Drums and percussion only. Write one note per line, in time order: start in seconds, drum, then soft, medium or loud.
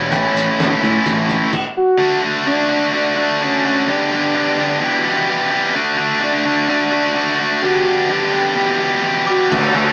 0.12 kick loud
0.12 closed hi-hat medium
0.36 closed hi-hat medium
0.60 snare loud
0.60 closed hi-hat medium
0.83 kick medium
0.83 closed hi-hat medium
1.06 kick loud
1.06 closed hi-hat medium
1.30 kick medium
1.30 closed hi-hat medium
1.53 kick loud
1.53 crash medium
9.52 kick loud
9.52 crash loud